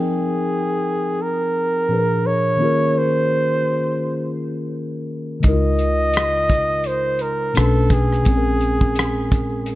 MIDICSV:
0, 0, Header, 1, 5, 480
1, 0, Start_track
1, 0, Tempo, 705882
1, 1775, Time_signature, 4, 2, 24, 8
1, 6631, End_track
2, 0, Start_track
2, 0, Title_t, "Flugelhorn"
2, 0, Program_c, 0, 56
2, 0, Note_on_c, 0, 68, 73
2, 828, Note_on_c, 0, 70, 79
2, 838, Note_off_c, 0, 68, 0
2, 1540, Note_on_c, 0, 73, 94
2, 1551, Note_off_c, 0, 70, 0
2, 2026, Note_on_c, 0, 72, 83
2, 2037, Note_off_c, 0, 73, 0
2, 2981, Note_off_c, 0, 72, 0
2, 3705, Note_on_c, 0, 75, 98
2, 4670, Note_on_c, 0, 72, 84
2, 4680, Note_off_c, 0, 75, 0
2, 4909, Note_on_c, 0, 70, 78
2, 4919, Note_off_c, 0, 72, 0
2, 5149, Note_on_c, 0, 69, 79
2, 5159, Note_off_c, 0, 70, 0
2, 5389, Note_on_c, 0, 68, 81
2, 5400, Note_off_c, 0, 69, 0
2, 6631, Note_off_c, 0, 68, 0
2, 6631, End_track
3, 0, Start_track
3, 0, Title_t, "Tine electric piano"
3, 0, Program_c, 1, 4
3, 0, Control_c, 1, 64, 127
3, 0, Note_on_c, 1, 53, 53
3, 0, Note_on_c, 1, 60, 48
3, 0, Note_on_c, 1, 63, 47
3, 0, Note_on_c, 1, 68, 48
3, 0, Note_on_c, 1, 70, 58
3, 0, Note_on_c, 1, 79, 48
3, 1257, Note_off_c, 1, 53, 0
3, 1263, Note_off_c, 1, 60, 0
3, 1268, Note_off_c, 1, 63, 0
3, 1274, Note_off_c, 1, 79, 0
3, 1279, Note_off_c, 1, 68, 0
3, 1281, Note_on_c, 1, 46, 48
3, 1285, Note_off_c, 1, 70, 0
3, 1287, Note_on_c, 1, 53, 45
3, 1297, Note_on_c, 1, 62, 43
3, 1303, Note_on_c, 1, 68, 44
3, 1304, Control_c, 1, 64, 0
3, 1312, Note_on_c, 1, 71, 44
3, 1353, Note_off_c, 1, 71, 0
3, 1354, Note_on_c, 1, 70, 51
3, 1443, Control_c, 1, 64, 127
3, 1745, Note_on_c, 1, 51, 55
3, 1757, Note_on_c, 1, 58, 49
3, 1767, Note_on_c, 1, 61, 49
3, 1768, Note_off_c, 1, 46, 0
3, 1772, Note_off_c, 1, 53, 0
3, 1776, Note_off_c, 1, 62, 0
3, 1779, Note_off_c, 1, 68, 0
3, 1780, Note_on_c, 1, 65, 51
3, 1783, Control_c, 1, 64, 0
3, 1791, Note_on_c, 1, 68, 50
3, 1793, Note_off_c, 1, 70, 0
3, 1802, Note_on_c, 1, 70, 59
3, 1905, Control_c, 1, 64, 127
3, 3653, Note_off_c, 1, 51, 0
3, 3659, Note_off_c, 1, 58, 0
3, 3664, Note_off_c, 1, 61, 0
3, 3671, Note_off_c, 1, 65, 0
3, 3671, Note_on_c, 1, 49, 56
3, 3676, Note_off_c, 1, 68, 0
3, 3681, Note_off_c, 1, 70, 0
3, 3684, Note_on_c, 1, 56, 49
3, 3699, Note_on_c, 1, 63, 48
3, 3703, Control_c, 1, 64, 0
3, 3714, Note_on_c, 1, 64, 42
3, 3728, Note_on_c, 1, 70, 60
3, 3754, Note_off_c, 1, 64, 0
3, 3756, Note_on_c, 1, 65, 52
3, 3827, Control_c, 1, 64, 127
3, 5096, Note_off_c, 1, 49, 0
3, 5103, Note_off_c, 1, 56, 0
3, 5110, Note_off_c, 1, 63, 0
3, 5123, Note_on_c, 1, 47, 52
3, 5124, Note_off_c, 1, 70, 0
3, 5130, Note_on_c, 1, 57, 48
3, 5138, Note_on_c, 1, 61, 47
3, 5139, Note_off_c, 1, 65, 0
3, 5145, Control_c, 1, 64, 0
3, 5146, Note_on_c, 1, 62, 46
3, 5152, Note_on_c, 1, 71, 58
3, 5257, Control_c, 1, 64, 127
3, 5594, Note_on_c, 1, 46, 58
3, 5607, Note_on_c, 1, 56, 49
3, 5610, Note_off_c, 1, 47, 0
3, 5613, Note_off_c, 1, 57, 0
3, 5617, Note_off_c, 1, 61, 0
3, 5621, Note_off_c, 1, 62, 0
3, 5621, Note_on_c, 1, 60, 54
3, 5624, Note_off_c, 1, 71, 0
3, 5625, Control_c, 1, 64, 0
3, 5635, Note_on_c, 1, 61, 50
3, 5651, Note_on_c, 1, 68, 51
3, 5683, Note_off_c, 1, 68, 0
3, 5694, Note_on_c, 1, 70, 59
3, 5741, Control_c, 1, 64, 127
3, 6631, Note_off_c, 1, 46, 0
3, 6631, Note_off_c, 1, 56, 0
3, 6631, Note_off_c, 1, 60, 0
3, 6631, Note_off_c, 1, 61, 0
3, 6631, Note_off_c, 1, 70, 0
3, 6631, End_track
4, 0, Start_track
4, 0, Title_t, "Fingered electric bass"
4, 0, Program_c, 2, 33
4, 3709, Note_on_c, 2, 37, 64
4, 5115, Note_off_c, 2, 37, 0
4, 5153, Note_on_c, 2, 35, 70
4, 5601, Note_off_c, 2, 35, 0
4, 5627, Note_on_c, 2, 34, 62
4, 6631, Note_off_c, 2, 34, 0
4, 6631, End_track
5, 0, Start_track
5, 0, Title_t, "Drums"
5, 3692, Note_on_c, 9, 42, 68
5, 3700, Note_on_c, 9, 36, 86
5, 3760, Note_off_c, 9, 42, 0
5, 3768, Note_off_c, 9, 36, 0
5, 3935, Note_on_c, 9, 42, 48
5, 4003, Note_off_c, 9, 42, 0
5, 4171, Note_on_c, 9, 42, 63
5, 4196, Note_on_c, 9, 37, 86
5, 4239, Note_off_c, 9, 42, 0
5, 4264, Note_off_c, 9, 37, 0
5, 4414, Note_on_c, 9, 42, 62
5, 4417, Note_on_c, 9, 36, 77
5, 4482, Note_off_c, 9, 42, 0
5, 4485, Note_off_c, 9, 36, 0
5, 4650, Note_on_c, 9, 42, 57
5, 4718, Note_off_c, 9, 42, 0
5, 4889, Note_on_c, 9, 42, 49
5, 4957, Note_off_c, 9, 42, 0
5, 5134, Note_on_c, 9, 42, 69
5, 5150, Note_on_c, 9, 37, 83
5, 5202, Note_off_c, 9, 42, 0
5, 5218, Note_off_c, 9, 37, 0
5, 5371, Note_on_c, 9, 42, 57
5, 5373, Note_on_c, 9, 36, 82
5, 5439, Note_off_c, 9, 42, 0
5, 5441, Note_off_c, 9, 36, 0
5, 5525, Note_on_c, 9, 37, 30
5, 5593, Note_off_c, 9, 37, 0
5, 5611, Note_on_c, 9, 42, 77
5, 5619, Note_on_c, 9, 36, 84
5, 5679, Note_off_c, 9, 42, 0
5, 5687, Note_off_c, 9, 36, 0
5, 5852, Note_on_c, 9, 42, 48
5, 5920, Note_off_c, 9, 42, 0
5, 5991, Note_on_c, 9, 36, 73
5, 6059, Note_off_c, 9, 36, 0
5, 6089, Note_on_c, 9, 42, 59
5, 6114, Note_on_c, 9, 37, 89
5, 6157, Note_off_c, 9, 42, 0
5, 6182, Note_off_c, 9, 37, 0
5, 6333, Note_on_c, 9, 42, 60
5, 6336, Note_on_c, 9, 36, 80
5, 6401, Note_off_c, 9, 42, 0
5, 6404, Note_off_c, 9, 36, 0
5, 6570, Note_on_c, 9, 42, 58
5, 6631, Note_off_c, 9, 42, 0
5, 6631, End_track
0, 0, End_of_file